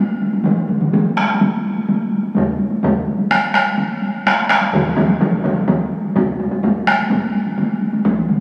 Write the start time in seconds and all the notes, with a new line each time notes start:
0.22 taiko high
0.33 taiko high
0.44 taiko mid, taiko high
0.68 taiko mid, taiko high
0.81 taiko mid, taiko high
0.93 taiko mid, taiko high
1.17 taiko rim, taiko high
1.28 taiko high
1.41 taiko high
1.64 taiko high
1.76 taiko high
1.89 taiko high
2.12 taiko high
2.23 taiko high
2.35 taiko low-mid, taiko high
2.59 taiko high
2.71 taiko high
2.83 taiko low-mid, taiko high
3.07 taiko high
3.19 taiko high
3.31 taiko rim, taiko high
3.54 taiko rim, taiko high
3.66 taiko high
3.78 taiko high
4.02 taiko high
4.26 taiko rim, taiko high
4.49 taiko rim, taiko high
4.61 taiko high
4.73 taiko low-mid, taiko mid, taiko high
4.97 taiko low-mid, taiko mid, taiko high
5.09 taiko high
5.21 taiko low-mid, taiko mid, taiko high
5.44 taiko low-mid, taiko mid, taiko high
5.58 taiko high
5.68 taiko low-mid, taiko mid, taiko high
5.92 taiko high
6.04 taiko high
6.16 taiko, taiko low-mid, taiko high
6.40 taiko low-mid, taiko high
6.51 taiko low-mid, taiko high
6.63 taiko low-mid, taiko high
6.87 taiko rim, taiko high
6.99 taiko high
7.10 taiko, taiko high
7.35 taiko high
7.46 taiko high
7.58 taiko high
7.81 taiko high
7.93 taiko high
8.05 taiko, taiko mid, taiko high
8.29 taiko mid, taiko high